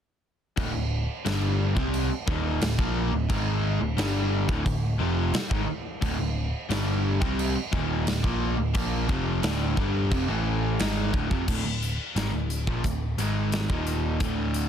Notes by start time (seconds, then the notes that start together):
0.57 D1 D2 A2, kick, crash
0.74 D1 D2 A2
1.25 G1 G2 D3 G3, snare, crash
1.76 C2 C3 G3 C4, kick
1.94 crash
2.10 muted overdriven electric guitar stroke, muted picked electric bass stroke
2.26 D#1 D#2 A#2 D#3, kick
2.61 D1 D2 A2, snare, crash
2.78 A#1 A#2 F3 A#3, kick
3.12 D1 D2 A2
3.29 G#1 G#2 D#3 G#3, kick, crash
3.80 D1 D2 A2
3.97 G1 G2 D3 G3, snare, crash
4.48 D1 D2 A2, kick
4.65 D1 D2 A2, kick, crash
4.98 F1 F2 C3 F3
5.33 muted overdriven electric guitar stroke, muted picked electric bass stroke, snare, crash
5.50 G#1 G#2 D#3, kick
5.68 muted overdriven electric guitar stroke, muted picked electric bass stroke
6.01 D1 D2 A2, kick, crash
6.18 D1 D2 A2
6.69 G1 G2 D3 G3, snare, crash
7.20 C2 C3 G3 C4, kick
7.39 crash
7.55 muted overdriven electric guitar stroke, muted picked electric bass stroke
7.71 D#1 D#2 A#2 D#3, kick
8.06 D1 D2 A2, snare, crash
8.22 A#1 A#2 F3 A#3, kick
8.57 D1 D2 A2
8.73 A#1 A#2 F3 A#3, kick, crash
9.08 F1 F2 C3 F3, kick
9.42 D1 D2 A2 D3, snare, crash
9.77 G1 G2 D3 G3, kick
10.11 F1 F2 C3, kick, crash
10.28 A1 A2 E3 A3
10.79 G#1 G#2 D#3 G#3, snare, crash
11.13 D1 D2 A2, kick
11.30 F1 F2 C3, kick
11.48 D1 D2 A2, kick, crash
11.65 D1 D2 A2
11.83 closed hi-hat
12.15 G#1 G#2 D#3, snare, closed hi-hat
12.33 D1 D2 A2
12.50 closed hi-hat
12.67 A#1 A#2 F3, kick
12.84 D1 D2 A2, kick, closed hi-hat
13.18 G#1 G#2 D#3 G#3, snare, closed hi-hat
13.52 snare, closed hi-hat
13.69 D#1 D#2 A#2 D#3, kick
13.87 closed hi-hat
14.20 D1 D2 A2 D3, kick, closed hi-hat
14.54 closed hi-hat